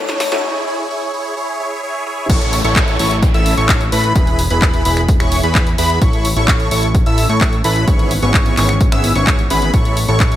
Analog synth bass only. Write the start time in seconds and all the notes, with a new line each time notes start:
Already playing: A2
0.32 A2
2.30 A1
2.64 A1
2.99 A1
3.34 A1
3.58 A1
3.92 A2
4.16 E1
4.51 E1
4.85 E1
5.20 E1
5.44 E2
5.78 E2
6.02 A1
6.37 A1
6.71 A1
7.06 A1
7.30 A2
7.64 A1
7.88 G#1
8.23 G#1
8.57 G#1
8.92 G#1
9.16 G#1
9.51 G#1
9.74 A1
10.09 A1